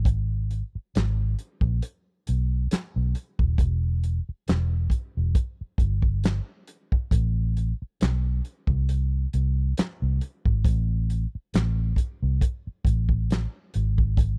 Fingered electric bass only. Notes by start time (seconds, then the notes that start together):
Already playing: G#1
0.75 muted fingered electric bass stroke
0.96 G#1
1.62 A#1
2.29 B1
2.72 muted fingered electric bass stroke
2.96 B1
3.40 D#1
3.59 E1
4.29 muted fingered electric bass stroke
4.49 E1
5.17 E1
5.61 muted fingered electric bass stroke
5.80 G1
7.12 A1
7.82 muted fingered electric bass stroke
8.02 B1
8.69 C2
9.34 C2
9.79 muted fingered electric bass stroke
10.02 C2
10.47 G#1
10.66 A1
11.35 muted fingered electric bass stroke
11.55 A1
12.22 C2
12.67 muted fingered electric bass stroke
12.86 A1
13.75 G#1